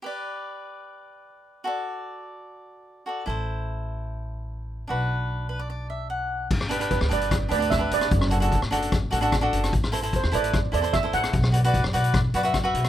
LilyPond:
<<
  \new Staff \with { instrumentName = "Steel pan" } { \time 4/4 \key g \major \tempo 4 = 149 r1 | r1 | r1 | r1 |
r4 b'8 d''4 d''8 e''8 d''8~ | d''4. r2 r8 | r4 c''8 d''4 d''8 e''8 fis''8~ | fis''4. r2 r8 | }
  \new Staff \with { instrumentName = "Cavaquinho" } { \time 4/4 \key g \major << { r1 | r1 | r1 | r4. b'16 d''16 d''8 e''8 fis''4 |
r1 | r1 | r1 | r1 | } \\ { <g' b' d''>1 | <fis' a' d''>2.~ <fis' a' d''>8 <fis' a' d''>8 | <e' a' c''>1 | <d' fis' b'>1 |
r8 <d' g' b'>16 <d' g' b'>8 r16 <d' g' b'>8 r8 <d' g' b'>16 <d' g' b'>16 r16 <d' g' b'>8. | r8 <d' fis' a'>16 <d' fis' a'>8 r16 <d' fis' a'>8 r8 <d' fis' a'>16 <d' fis' a'>16 r16 <d' fis' a'>8. | r8 <e' a' c''>16 <e' a' c''>8 r16 <e' a' b'>8 r8 <e' a' c''>16 <e' a' c''>16 r16 <e' a' c''>8. | r8 <fis' b' d''>16 <fis' b' d''>8 r16 <fis' b' d''>8 r8 <fis' b' d''>16 <fis' b' e''>16 r16 <fis' b' e''>8. | } >> }
  \new Staff \with { instrumentName = "Upright bass" } { \clef bass \time 4/4 \key g \major r1 | r1 | a,,1 | b,,1 |
g,,4~ g,,16 d,16 g,,4 d,4 g,,8 | fis,,4~ fis,,16 a,,16 fis,,4 a,,4 fis,,8 | a,,4~ a,,16 e,16 a,,4 e,4 a,,8 | b,,4~ b,,16 fis,16 b,,4 fis,4 b,,8 | }
  \new DrumStaff \with { instrumentName = "Drums" } \drummode { \time 4/4 r4 r4 r4 r4 | r4 r4 r4 r4 | r4 r4 r4 r4 | r4 r4 r4 r4 |
<cymc bd>16 ss16 hh16 hh16 <hh bd>16 ss16 hh16 hh16 <hh bd ss>8 hh16 hh16 <hh bd ss>8 hh16 <hh ss>16 | <hh bd>16 ss16 hh16 hh16 <hh bd>16 ss16 hh16 hh16 <hh bd ss>8 hh16 hh16 <hh bd ss>8 hh16 <hh ss>16 | <hh bd>16 ss16 hh16 hh16 <hh bd>16 ss16 hh16 hh16 <hh bd ss>8 hh16 hh16 <hh bd ss>8 hh16 <hh ss>16 | <hh bd>16 ss16 hh16 hh16 <hh bd>16 ss16 hh16 hh16 <hh bd ss>8 hh16 hh16 <hh bd ss>8 hh16 <hh ss>16 | }
>>